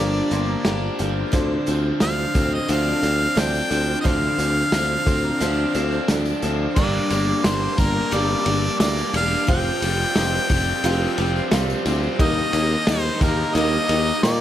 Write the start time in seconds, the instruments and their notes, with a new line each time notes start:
Already playing: picked electric bass G1, steel-string acoustic guitar G2 D3 F3 A#3, overdriven electric guitar G2 D3 F3 A#3, grand piano F4, harmonica D5
0.00 steel-string acoustic guitar D4 G4, grand piano G4 A#4
0.31 picked electric bass G1, steel-string acoustic guitar F3 A#3 D4 G4, grand piano C6, closed hi-hat
0.49 grand piano A#5
0.64 picked electric bass G1, steel-string acoustic guitar F3 A#3 D4 G4, grand piano F4 G4 A#4 G5, snare, closed hi-hat
0.99 picked electric bass G1, steel-string acoustic guitar F3 A#3 D4 G4, tonewheel organ G3, grand piano F5, closed hi-hat
1.05 tonewheel organ A3 B3
1.11 tonewheel organ C4 D4
1.16 tonewheel organ E4 F4
1.22 tonewheel organ G4 A4
1.28 tonewheel organ B4 C5
1.32 picked electric bass D2, steel-string acoustic guitar D3 F3 C4 D4 A4, grand piano D4 F4 C5, tonewheel organ D4 F4 A4, kick, closed hi-hat
1.66 picked electric bass D2, overdriven electric guitar F3, steel-string acoustic guitar C4 D4 A4, closed hi-hat, tambourine
2.00 picked electric bass D2, steel-string acoustic guitar F3 C4 D4 A4, grand piano D4 F4 C5, harmonica F5, snare, closed hi-hat, tambourine
2.19 tambourine
2.34 picked electric bass D2, steel-string acoustic guitar C4 D4 A4, kick, closed hi-hat, tambourine
2.54 harmonica D#5
2.68 picked electric bass D2, steel-string acoustic guitar D3 F3 C4 D4 A4, grand piano D4 F4 C5, harmonica F5, closed hi-hat
2.86 tambourine
3.02 picked electric bass D2, steel-string acoustic guitar C4 D4 A4, closed hi-hat
3.35 picked electric bass D2, steel-string acoustic guitar F3 C4 D4 A4, grand piano D4 F4 C5, snare, closed hi-hat, tambourine
3.40 harmonica G5
3.55 tambourine
3.70 picked electric bass D2, overdriven electric guitar F3, steel-string acoustic guitar C4 D4 A4, closed hi-hat, tambourine
4.00 steel-string acoustic guitar D3, grand piano D4, harmonica D#5
4.04 picked electric bass D2, steel-string acoustic guitar F3 C4 D4 A4, grand piano F4 C5, tonewheel organ F4 A4 C5 D5, harmonica F5, kick, closed hi-hat, tambourine
4.23 tambourine
4.38 picked electric bass D2, overdriven electric guitar F3, steel-string acoustic guitar C4 D4 A4, closed hi-hat, tambourine
4.57 tambourine
4.72 picked electric bass D2, steel-string acoustic guitar F3 C4 D4 A4, grand piano D4 F4 C5, snare, closed hi-hat, tambourine
5.06 picked electric bass D2, steel-string acoustic guitar C4 D4 A4, grand piano C6, kick, closed hi-hat, tambourine
5.24 grand piano A#5
5.40 picked electric bass D2, steel-string acoustic guitar D3 F3 C4 D4 A4, grand piano D4 F4 C5 A5, closed hi-hat, tambourine
5.75 picked electric bass D2, steel-string acoustic guitar C4 D4 A4, closed hi-hat, tambourine
5.92 tambourine
6.08 picked electric bass D2, steel-string acoustic guitar F3 C4 D4 A4, grand piano D4 F4 A4 D5, snare, closed hi-hat, tambourine
6.25 tambourine
6.42 picked electric bass D2, overdriven electric guitar F3, steel-string acoustic guitar C4 D4 A4, closed hi-hat, tambourine
6.76 picked electric bass G1, steel-string acoustic guitar G2 D3 G3 A#3 D4 G4, tonewheel organ D4 G4 A#4 D5, grand piano D4 G4 A#4 D5, harmonica D5, kick, crash, tambourine
7.10 picked electric bass G1, steel-string acoustic guitar G3 A#3 D4 G4, ride, tambourine
7.28 tambourine
7.44 picked electric bass G1, steel-string acoustic guitar G3 A#3 D4 G4, grand piano D4 G4 A#4 D5, harmonica C5, snare, ride, tambourine
7.78 picked electric bass G1, steel-string acoustic guitar G3 A#3 D4 G4, harmonica A#4, kick, ride, tambourine
8.11 picked electric bass G1, steel-string acoustic guitar G2 D3 G3 A#3 D4 G4, grand piano D4 G4 A#4 D5, harmonica D5, ride, tambourine
8.46 picked electric bass G1, steel-string acoustic guitar G3 A#3 D4 G4, ride, tambourine
8.80 picked electric bass D2, steel-string acoustic guitar G3 A#3 D4 G4, grand piano D4 G4 A#4 D5, harmonica D5, snare, ride, tambourine
8.98 tambourine
9.13 picked electric bass E1, steel-string acoustic guitar G3 A#3 D4 G4, harmonica F5, ride, tambourine
9.32 tambourine
9.47 picked electric bass F1, steel-string acoustic guitar F3 C4 F4 G4, tonewheel organ C4 F4 G4 C5, grand piano F4 G4 C5 F5, harmonica G5, kick, ride, tambourine
9.82 picked electric bass F1, overdriven electric guitar G3, steel-string acoustic guitar C4 F4 G4, ride, tambourine
10.16 picked electric bass F1, steel-string acoustic guitar F3 C4 F4 G4, grand piano F4 G4 C5 D#5, snare, ride, tambourine
10.50 picked electric bass F1, overdriven electric guitar G3, steel-string acoustic guitar C4 F4 G4, kick, ride, tambourine
10.84 picked electric bass F1, steel-string acoustic guitar F3 C4 F4 G4, grand piano F4 G4 C5 F5, ride, tambourine
11.18 picked electric bass F1, steel-string acoustic guitar C4 F4 G4, ride, tambourine
11.36 tambourine
11.51 picked electric bass C2, steel-string acoustic guitar F3 C4 F4 G4, overdriven electric guitar G3, grand piano F4 G4 C5 F5, snare, ride, tambourine
11.70 tambourine
11.85 picked electric bass D2, steel-string acoustic guitar C4 F4 G4, ride, tambourine
12.03 tambourine
12.19 picked electric bass D#2, steel-string acoustic guitar D#3 G3 A#3 D#4 G4, tonewheel organ A#3 D#4 G4 A#4, grand piano D#4 G4 A#4 D#5, harmonica D#5, kick, ride, tambourine
12.53 picked electric bass D#2, steel-string acoustic guitar A#3 D#4 G4, ride, tambourine
12.72 tambourine
12.87 picked electric bass D#2, steel-string acoustic guitar G3 A#3 D#4 G4, grand piano D#4 G4 A#4 D#5, harmonica C5, snare, ride, tambourine
13.21 picked electric bass D#2, steel-string acoustic guitar A#3 D#4 G4, harmonica A#4, kick, ride, tambourine
13.55 picked electric bass D#2, steel-string acoustic guitar D#3 G3 A#3 D#4 G4, grand piano D#4 G4 A#4 D#5, harmonica D#5, ride, tambourine
13.89 picked electric bass D#2, steel-string acoustic guitar A#3 D#4 G4, ride, tambourine
14.07 tambourine
14.22 picked electric bass A#2, steel-string acoustic guitar G3 A#3 D#4 G4, grand piano D#4 G4 A#4 G5, harmonica D5, snare, ride, tambourine